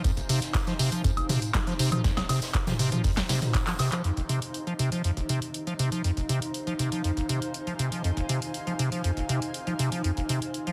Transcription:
Already playing: D#4 C5 F5 G#5
0.04 F2, kick, closed hi-hat, tambourine
0.17 F1, closed hi-hat, tambourine
0.29 C3, open hi-hat, tambourine
0.42 snare, closed hi-hat, tambourine
0.54 kick, snare, clap, closed hi-hat, tambourine
0.67 F3, snare, closed hi-hat, tambourine
0.79 C3, open hi-hat, tambourine
0.92 F3, closed hi-hat, tambourine
1.04 F2, kick, closed hi-hat, tambourine
1.17 F1, closed hi-hat, tambourine, high woodblock
1.29 C3, mid tom, open hi-hat, tambourine
1.42 closed hi-hat, tambourine
1.54 kick, snare, clap, closed hi-hat, tambourine
1.67 F3, snare, closed hi-hat, tambourine
1.79 C3, open hi-hat, tambourine
1.92 F3, closed hi-hat, mid tom, tambourine, high woodblock
2.04 F2, kick, snare, closed hi-hat, tambourine
2.17 F1, snare, closed hi-hat, tambourine, high woodblock
2.29 C3, snare, open hi-hat, tambourine, high woodblock
2.42 snare, open hi-hat, tambourine
2.54 kick, snare, clap, closed hi-hat, tambourine
2.67 F3, snare, closed hi-hat, mid tom, tambourine
2.79 C3, open hi-hat, tambourine
2.92 F3, closed hi-hat, mid tom, tambourine
3.04 F2, kick, closed hi-hat, open hi-hat, tambourine
3.17 F1, snare, clap, closed hi-hat, tambourine
3.29 C3, snare, open hi-hat, tambourine
3.41 snare, closed hi-hat, mid tom, tambourine
3.54 kick, snare, clap, closed hi-hat, tambourine
3.67 F3, snare, clap, closed hi-hat, tambourine
3.79 C3, snare, open hi-hat, tambourine, high woodblock
3.92 F3, clap, closed hi-hat, tambourine
4.04 F2 D#4, closed hi-hat
4.17 F1, closed hi-hat
4.29 C3, closed hi-hat
4.42 closed hi-hat
4.54 closed hi-hat
4.60 C5
4.67 F3, closed hi-hat
4.79 C3, closed hi-hat
4.92 F3, closed hi-hat
5.04 F2, closed hi-hat
5.17 F1 F5, closed hi-hat
5.29 C3, closed hi-hat
5.42 closed hi-hat
5.54 closed hi-hat
5.67 F3, closed hi-hat
5.79 C3, closed hi-hat
5.92 F3, closed hi-hat
6.04 F2, closed hi-hat
6.16 F1 G#5, closed hi-hat
6.29 C3, closed hi-hat
6.42 closed hi-hat
6.54 closed hi-hat
6.67 F3, closed hi-hat
6.79 C3, closed hi-hat
6.92 F3, closed hi-hat
7.04 F2, closed hi-hat
7.17 F1, closed hi-hat
7.29 C3, closed hi-hat
7.42 closed hi-hat
7.54 closed hi-hat
7.67 F3, closed hi-hat
7.79 C3, closed hi-hat
7.92 F3, closed hi-hat
8.04 F2, closed hi-hat
8.17 F1, closed hi-hat
8.29 C3, closed hi-hat
8.42 closed hi-hat
8.54 closed hi-hat
8.67 F3, closed hi-hat
8.79 C3, closed hi-hat
8.92 F3, closed hi-hat
9.04 F2, closed hi-hat
9.17 F1, closed hi-hat
9.29 C3, closed hi-hat
9.42 closed hi-hat
9.54 closed hi-hat
9.67 F3, closed hi-hat
9.79 C3, closed hi-hat
9.92 F3, closed hi-hat
10.04 F2, closed hi-hat
10.17 F1, closed hi-hat
10.29 C3, closed hi-hat
10.42 closed hi-hat
10.54 closed hi-hat
10.67 F3, closed hi-hat

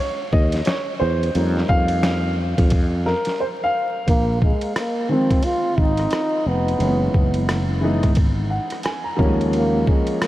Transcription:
0.00 C#5
0.32 D#2 D#5, kick
0.52 snare, ride
0.65 C#5, snare, hi-hat pedal, ride
0.99 E2 C5
1.23 ride
1.35 F2 G3 A#3 D#4, ride
1.57 snare
1.69 F2 F5, kick
1.88 ride
2.03 snare, hi-hat pedal, ride
2.58 F2, kick, ride
2.70 kick, ride
3.06 A#4, snare
3.25 snare, ride
3.40 C5
3.64 F5
4.07 A#1 A#3, kick, ride
4.41 G#3, kick
4.61 ride
4.76 A#3, cross-stick, hi-hat pedal, ride
5.09 D#3 F3 G#3 C4
5.31 kick, cross-stick, ride
5.43 F4, ride
5.78 G#1 D#4, kick
5.97 cross-stick, ride
6.11 cross-stick, hi-hat pedal, ride
6.46 F1 B3
6.68 ride
6.79 F#1 E3 G#3 A#3 C#4, ride
6.87 B3
7.14 F#1, kick
7.34 ride
7.49 cross-stick, hi-hat pedal, ride
7.81 E3 G#3 B3 D#4
8.03 G#1, kick, cross-stick, ride
8.15 kick, ride
8.50 F#5
8.70 cross-stick, ride
8.83 G#5, cross-stick, hi-hat pedal, ride
9.04 A#5
9.17 D#2 F3 G3 A#3 C#4, kick
9.24 G#3
9.41 ride
9.53 A#3, ride
9.87 G#3, kick
10.07 ride
10.22 A#3, cross-stick, hi-hat pedal, ride

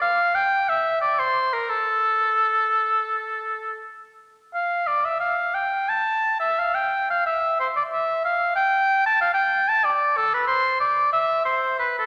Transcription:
0.01 F5
0.35 G5
0.69 E5
1.01 D5
1.19 C5
1.53 A#4
1.70 A4
4.54 F5
4.87 D5
5.05 E5
5.20 F5
5.54 G5
5.89 A5
6.40 E5
6.59 F5
6.75 G5
7.10 F5
7.26 E5
7.60 C5
7.76 D5
7.92 E5
8.25 F5
8.56 G5
9.06 A5
9.21 F5
9.34 G5
9.68 A5
9.85 D5
10.17 A4
10.34 B4
10.47 C5
10.80 D5
11.13 E5
11.45 C5
11.79 B4
11.99 A4

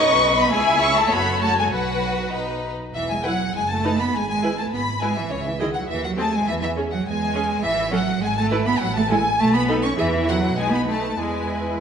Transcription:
Already playing: B1 C#4 D#4 B4 D#5 C#6
0.36 B3 B5
0.51 C#2 G#3 E4 G#4 E5 G#5
0.81 C#4 C#6
0.96 A3 A5
1.11 F#1 B3 F#4 A4 C#5 B5
1.41 A3 A5
1.56 G#3 G#5
1.72 B1 F#3 F#4 B4 F#5
2.33 B1 D#4 B4
2.94 E1 E3 E5
3.10 G#3 G#5
3.24 F#3 E4 B4 F#5
3.54 F#1 G#3 G#5
3.70 A3 A5
3.84 D#4 B4
3.99 B3 B5
4.14 G#1 G#3 G#5
4.28 G#3 G#5
4.43 E4 B4
4.58 A3 A5
4.72 G#1 B3 B5
5.01 G#3 E4 B4 G#5
5.16 E3 E5
5.31 C#2 C#3 C#5
5.44 E3 E5
5.59 D#3 E4 G#4 D#5
5.74 F#3 F#5
5.88 D#2 E3 E5
6.04 F#3 F#5
6.18 A3 C4 G#4 A5
6.32 G#3 G#5
6.46 E2 E3 E5
6.61 E3 E5
6.77 C#4 G#4
6.90 F#3 F#5
7.05 E2 G#3 G#5
7.35 C#4 G#4
7.63 A1 E3 E5
7.93 F#3 C#4 A4 F#5
8.22 G#1 G#3 G#5
8.37 A3 A5
8.52 E4 B4
8.66 B3 B5
8.81 A1 F#3 F#5
8.95 A3 A5
9.10 G#3 E4 A4 G#5
9.39 B1 A3 A5
9.54 B3 B5
9.68 D#4 A4
9.84 C#4 C#6
9.98 E2 E3 E4 G#4 E5
10.28 F#3 A4 F#5
10.57 B1 G#3 D#4 B4 G#5
10.73 B3 B5
10.88 A3 A5
11.18 E2 G#3 E4 B4 G#5

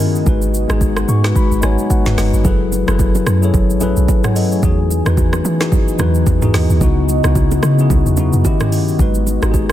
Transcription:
Already playing: D#3 C#4 E4 G#4 A#4
0.00 open hi-hat, shaker
0.15 shaker
0.25 G#1 G#3 B3 D#4 F#4 B4, kick, shaker
0.42 shaker
0.54 shaker
0.68 G#1 G#3 D#4 F#4 G#4, cross-stick, shaker
0.81 kick, shaker
0.97 cross-stick, shaker
1.08 G#2 C#6, shaker
1.23 G#3 D#4 F#4 B4, cross-stick, snare, shaker
1.36 B5, kick, shaker
1.51 G#1, shaker
1.61 G#1 G#3 D#4 F#4 C#5 G#5, cross-stick, shaker
1.78 shaker
1.90 F#5, kick, shaker
2.05 F#1 G#3 D#4 F#4 B4, snare, mid tom, shaker
2.18 F#1 D#5, cross-stick, snare, open hi-hat, shaker
2.33 G#1, shaker
2.43 F#1 F#3 A3 C#4 E4 G#4 A4 B4 G#5, kick, low conga, shaker
2.72 low bongo, shaker
2.86 F#1 F#3 E4 G#4 A4 B4, cross-stick, shaker
2.99 kick, high bongo, shaker
3.15 high bongo, low bongo, shaker
3.27 F#2, cross-stick, shaker
3.41 F#3 E4 G#4 A4 C#5, shaker
3.54 F#1, kick, low conga, shaker
3.70 A1, shaker
3.80 F#3 E4 G#4 A4 B4, low bongo, low conga, shaker
3.97 B1, shaker
4.08 kick, high bongo, shaker
4.24 C#5 F#5, cross-stick, mid tom, low bongo, shaker
4.36 A4 D#5, open hi-hat, high bongo, shaker
4.52 G#4 C#5, shaker
4.61 E2 E3 B3 D#4 F#4 G#4 D#5, kick, low conga, shaker
4.90 low bongo, shaker
5.05 E2 E3 D#4 F#4 B4, cross-stick, shaker
5.17 kick, high bongo, shaker
5.33 cross-stick, high bongo, low bongo, shaker
5.45 E3, shaker
5.59 E3 D#4 F#4 G#4, cross-stick, snare, shaker
5.72 kick, low conga, shaker
5.88 shaker
5.98 E2 E3 D#4 F#4 B4, cross-stick, low bongo, low conga, shaker
6.15 shaker
6.26 E2, kick, high bongo, shaker
6.41 E3 D#4 F#4 G#4, mid tom, low bongo, shaker
6.54 D#2, cross-stick, snare, open hi-hat, high bongo, shaker
6.70 D#2, shaker
6.80 C#2 C#3 G#3 B3 D#4 E4 F#4, kick, low conga, shaker
7.09 low bongo, shaker
7.23 C#2 C#3 B3 D#4 E4 F#4, cross-stick, shaker
7.35 kick, high bongo, shaker
7.51 high bongo, low bongo, shaker
7.63 C#3, cross-stick, shaker
7.77 C#3 B3 D#4 E4 G#4, shaker
7.90 C#2, kick, low conga, shaker
8.06 E2, shaker
8.16 C#3 B3 D#4 E4 F#4, low bongo, low conga, shaker
8.33 F#2, shaker
8.43 D#3 C#4 E4 G4, kick, high bongo, shaker
8.59 D#3 C#4 E4 G4, cross-stick, mid tom, low bongo, shaker
8.72 open hi-hat, high bongo, shaker
8.88 shaker
8.98 G#1 G#3 B3 D#4 F#4 B4, kick, low conga, shaker
9.15 shaker
9.27 low bongo, shaker
9.41 G#1 G#3 D#4 F#4 G4, cross-stick, shaker
9.51 G#4, kick, high bongo, shaker

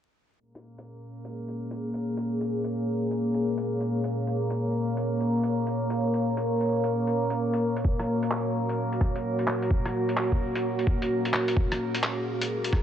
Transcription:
0.39 A#3 G#4 A#4 C#5
0.55 closed hi-hat
0.78 closed hi-hat
1.25 closed hi-hat
1.48 closed hi-hat
1.71 closed hi-hat
1.94 closed hi-hat
2.17 closed hi-hat
2.41 closed hi-hat
2.64 closed hi-hat
3.11 closed hi-hat
3.34 closed hi-hat
3.58 closed hi-hat
3.81 closed hi-hat
4.04 closed hi-hat
4.11 A#4
4.27 closed hi-hat
4.50 closed hi-hat
4.97 closed hi-hat
5.21 closed hi-hat
5.43 closed hi-hat
5.67 closed hi-hat
5.90 closed hi-hat
6.14 closed hi-hat
6.37 closed hi-hat
6.61 closed hi-hat
6.84 closed hi-hat
7.07 closed hi-hat
7.30 closed hi-hat
7.54 closed hi-hat
7.77 closed hi-hat
7.85 F#4, kick
8.00 cross-stick, closed hi-hat
8.23 closed hi-hat
8.31 clap
8.69 closed hi-hat
8.92 closed hi-hat
9.01 kick, cross-stick
9.16 closed hi-hat
9.39 closed hi-hat
9.48 clap
9.62 closed hi-hat
9.71 kick
9.86 cross-stick, closed hi-hat
10.09 closed hi-hat
10.17 clap
10.32 kick
10.55 closed hi-hat
10.79 closed hi-hat
10.87 kick
11.02 closed hi-hat
11.25 closed hi-hat
11.34 clap
11.48 closed hi-hat
11.57 G#4, kick
11.72 cross-stick, closed hi-hat
11.94 closed hi-hat
12.03 clap
12.41 closed hi-hat
12.64 closed hi-hat
12.73 kick, cross-stick

